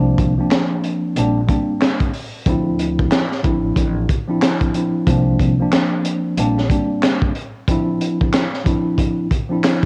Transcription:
Already playing: upright bass C2, tine electric piano F3 A#3 C4 D4
0.18 upright bass C2, kick, closed hi-hat
0.37 tine electric piano F3 A#3 C4 D4
0.51 snare, clap, closed hi-hat
0.83 closed hi-hat
1.16 upright bass A#1, tine electric piano G3 A#3 C4 D4, closed hi-hat
1.47 tine electric piano G3 A#3 C4 D4, kick, closed hi-hat
1.81 snare, clap, closed hi-hat
2.00 kick, closed hi-hat
2.14 open hi-hat
2.46 upright bass D2, tine electric piano F3 C4 D4 E4, kick, closed hi-hat
2.79 closed hi-hat
2.99 kick
3.12 snare, clap, closed hi-hat
3.32 snare
3.43 upright bass A1, tine electric piano F3 C4 D4 E4, kick, closed hi-hat
3.76 upright bass A1, kick, closed hi-hat
4.09 kick, closed hi-hat
4.28 tine electric piano F3 C4 D4 E4
4.42 snare, clap, closed hi-hat
4.61 kick, closed hi-hat
4.74 tine electric piano F3 C4 D4 E4, closed hi-hat
5.07 upright bass C2, tine electric piano F3 A#3 C4 D4, kick, closed hi-hat
5.40 upright bass C2, kick, closed hi-hat
5.59 tine electric piano F3 A#3 C4 D4
5.73 snare, clap, closed hi-hat
6.05 closed hi-hat
6.37 upright bass A#1, tine electric piano G3 A#3 C4 D4, closed hi-hat
6.58 snare
6.69 tine electric piano G3 A#3 C4 D4, kick, closed hi-hat
7.03 snare, clap, closed hi-hat
7.22 kick
7.35 closed hi-hat
7.68 tine electric piano F3 C4 D4 E4, kick, closed hi-hat
8.01 closed hi-hat
8.21 kick
8.33 snare, clap, closed hi-hat
8.54 snare
8.64 tine electric piano F3 C4 D4 E4, kick, closed hi-hat
8.98 kick, closed hi-hat
9.31 kick, closed hi-hat
9.49 tine electric piano F3 C4 D4 E4
9.64 snare, clap, closed hi-hat

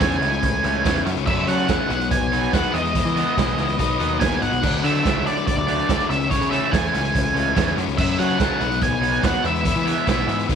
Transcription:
0.00 picked electric bass E2, overdriven electric guitar C#3 E3 A3 C#4, lead electric guitar G#5, kick, snare, closed hi-hat
0.12 closed hi-hat
0.21 picked electric bass C#2, overdriven electric guitar E3 A3 C#4, closed hi-hat
0.32 closed hi-hat
0.43 picked electric bass C#2, kick, closed hi-hat
0.63 picked electric bass C#2, overdriven electric guitar C#3 E3 A3 C#4, closed hi-hat
0.83 picked electric bass E2, overdriven electric guitar C#3 E3 A3 C#4, kick, snare, closed hi-hat
0.96 closed hi-hat
1.05 picked electric bass F#2, overdriven electric guitar F#2 C#3 F#3 A3 C#4, closed hi-hat
1.17 picked electric bass C#2, closed hi-hat
1.26 overdriven electric guitar F#2 C#3 F#3 A3 C#4, picked electric bass F#2, lead electric guitar E5, kick, crash
1.47 overdriven electric guitar C#3 F#3 A3 C#4, picked electric bass F#3, lead electric guitar F#5, closed hi-hat
1.58 closed hi-hat
1.68 picked electric bass E2, overdriven electric guitar C#3 F#3 A3 C#4, kick, snare, closed hi-hat
1.89 picked electric bass B1, overdriven electric guitar B2 F#3 B3 D#4, closed hi-hat
2.01 closed hi-hat
2.11 lead electric guitar G#5, kick, closed hi-hat
2.21 picked electric bass B1
2.32 overdriven electric guitar B2 F#3 B3 D#4, closed hi-hat
2.43 closed hi-hat
2.52 picked electric bass D#2, overdriven electric guitar B2 F#3 B3 D#4, lead electric guitar F#5, kick, snare, closed hi-hat
2.64 closed hi-hat
2.73 picked electric bass E2, overdriven electric guitar E3 G#3 B3 E4, lead electric guitar D#5, closed hi-hat
2.85 closed hi-hat
2.94 overdriven electric guitar E3 G#3 B3 E4, kick, closed hi-hat
3.05 picked electric bass E3
3.15 overdriven electric guitar E3 G#3 B3 E4, closed hi-hat
3.35 picked electric bass B1, overdriven electric guitar E3 G#3 B3 E4, kick, snare, closed hi-hat
3.48 closed hi-hat
3.57 picked electric bass C#2, overdriven electric guitar G#3 B3 E4, closed hi-hat
3.68 closed hi-hat
3.78 picked electric bass B1, overdriven electric guitar B2 F#3 B3 D#4, kick, closed hi-hat
4.00 picked electric bass D#2, overdriven electric guitar B2 F#3 B3 D#4, closed hi-hat
4.19 picked electric bass D#2, overdriven electric guitar B2 F#3 B3 D#4, lead electric guitar G#5, kick, snare, closed hi-hat
4.31 closed hi-hat
4.41 picked electric bass G#1, overdriven electric guitar F#3 B3 D#4, lead electric guitar F#5, closed hi-hat
4.52 picked electric bass B1, closed hi-hat
4.62 picked electric bass D2, overdriven electric guitar D3 F#3 A3 D4, kick, crash
4.83 picked electric bass D3, overdriven electric guitar D3 F#3 A3 D4, lead electric guitar E5, closed hi-hat
4.95 closed hi-hat
5.03 picked electric bass C#2, overdriven electric guitar D3 F#3 A3 D4, kick, snare, closed hi-hat
5.25 overdriven electric guitar F#3 A3 D4, lead electric guitar D5, closed hi-hat
5.37 closed hi-hat
5.47 lead electric guitar D5, kick, closed hi-hat
5.57 picked electric bass D2
5.67 overdriven electric guitar D3 F#3 A3 D4, closed hi-hat
5.79 closed hi-hat
5.88 picked electric bass D2, overdriven electric guitar D3 F#3 A3 D4, kick, snare, closed hi-hat
6.00 closed hi-hat
6.09 picked electric bass C#2, overdriven electric guitar C#3 E3 A3 C#4, lead electric guitar E5, snare, closed hi-hat
6.21 closed hi-hat
6.30 overdriven electric guitar C#3 E3 A3 C#4, lead electric guitar C#5, kick, closed hi-hat
6.41 picked electric bass C#3, closed hi-hat
6.51 overdriven electric guitar C#3 E3 A3 C#4, lead electric guitar E5, closed hi-hat
6.71 picked electric bass E2, overdriven electric guitar C#3 E3 A3 C#4, lead electric guitar G#5, kick, snare, closed hi-hat
6.84 closed hi-hat
6.93 picked electric bass C#2, overdriven electric guitar E3 A3 C#4, closed hi-hat
7.05 closed hi-hat
7.15 picked electric bass C#2, kick, closed hi-hat
7.35 picked electric bass C#2, overdriven electric guitar C#3 E3 A3 C#4, closed hi-hat
7.55 picked electric bass E2, overdriven electric guitar C#3 E3 A3 C#4, kick, snare, closed hi-hat
7.67 closed hi-hat
7.76 picked electric bass F#2, overdriven electric guitar F#2 C#3 F#3 A3 C#4, closed hi-hat
7.88 picked electric bass C#2, closed hi-hat
7.97 overdriven electric guitar F#2 C#3 F#3 A3 C#4, picked electric bass F#2, lead electric guitar E5, kick, crash
8.18 overdriven electric guitar C#3 F#3 A3 C#4, picked electric bass F#3, lead electric guitar F#5, closed hi-hat
8.29 closed hi-hat
8.39 picked electric bass C#2, overdriven electric guitar C#3 F#3 A3 C#4, kick, snare, closed hi-hat
8.60 picked electric bass B1, overdriven electric guitar B2 F#3 B3 D#4, closed hi-hat
8.72 closed hi-hat
8.81 lead electric guitar G#5, kick, closed hi-hat
8.92 picked electric bass B1
9.02 overdriven electric guitar B2 F#3 B3 D#4, closed hi-hat
9.13 closed hi-hat
9.22 picked electric bass D#2, overdriven electric guitar B2 F#3 B3 D#4, lead electric guitar F#5, kick, snare, closed hi-hat
9.34 closed hi-hat
9.43 picked electric bass E2, overdriven electric guitar E3 G#3 B3 E4, lead electric guitar E5, closed hi-hat
9.55 closed hi-hat
9.64 overdriven electric guitar E3 G#3 B3 E4, kick, closed hi-hat
9.76 picked electric bass E3, closed hi-hat
9.85 overdriven electric guitar E3 G#3 B3 E4, closed hi-hat
10.07 picked electric bass B1, overdriven electric guitar E3 G#3 B3 E4, kick, snare, closed hi-hat
10.27 picked electric bass G#2, overdriven electric guitar G#3 B3 E4, closed hi-hat
10.39 closed hi-hat
10.48 picked electric bass B1, overdriven electric guitar B2 D#3 F#3 B3 D#4, kick, closed hi-hat

